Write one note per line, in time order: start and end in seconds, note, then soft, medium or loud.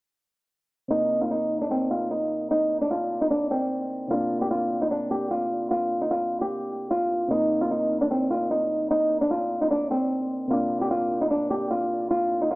0.88 4.05 C3 medium
0.88 4.07 A#3 medium
0.88 1.19 D#4 loud
0.93 4.08 D#4 medium
1.21 1.29 F4 medium
1.31 1.59 D#4 medium
1.61 1.69 D4 medium
1.71 1.88 C4 medium
1.91 2.08 F4 medium
2.11 2.48 D#4 medium
2.51 2.79 D#4 medium
2.81 2.89 D4 medium
2.91 3.19 F4 medium
3.21 3.29 D#4 medium
3.30 3.47 D4 medium
3.51 4.07 C4 medium
4.08 7.25 C3 medium
4.08 7.27 A#3 medium
4.08 4.39 F4 medium
4.13 7.28 D4 medium
4.41 4.49 G4 medium
4.51 4.79 F4 medium
4.81 4.89 D#4 medium
4.91 5.08 D4 medium
5.11 5.28 G4 medium
5.31 5.68 F4 medium
5.71 5.99 F4 loud
6.01 6.09 D#4 medium
6.11 6.39 F4 medium
6.41 6.88 G4 medium
6.91 7.28 F4 medium
7.28 10.45 C3 medium
7.28 10.47 A#3 medium
7.28 7.59 D#4 loud
7.33 10.48 D#4 medium
7.61 7.69 F4 medium
7.71 7.99 D#4 medium
8.01 8.09 D4 medium
8.11 8.28 C4 medium
8.31 8.48 F4 medium
8.51 8.88 D#4 medium
8.91 9.19 D#4 loud
9.21 9.29 D4 medium
9.31 9.59 F4 medium
9.61 9.69 D#4 medium
9.71 9.88 D4 medium
9.91 10.47 C4 medium
10.48 12.55 C3 medium
10.48 12.55 A#3 medium
10.48 10.79 F4 loud
10.53 12.55 D4 medium
10.81 10.89 G4 medium
10.91 11.19 F4 medium
11.21 11.29 D#4 medium
11.31 11.48 D4 medium
11.50 11.67 G4 medium
11.71 12.08 F4 medium
12.11 12.39 F4 loud
12.41 12.49 D#4 medium
12.51 12.55 F4 medium